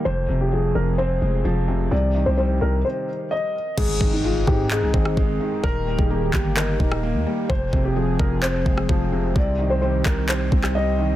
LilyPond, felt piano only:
\new Staff \with { instrumentName = "Felt piano" } { \clef bass \time 4/4 \key f \minor \tempo 4 = 129 f,8 c8 f4 c'8 aes8 f8 c8 | c8 ees8 g2~ g8 r8 | aes,8 ees8 aes4 ees'8 c'8 aes8 ees8 | ees8 g8 bes4 ees''8 ees'8 bes8 g8 |
f,8 c8 f4 c'8 aes8 f8 c8 | c8 ees8 g4 c''8 c'8 g8 ees8 | }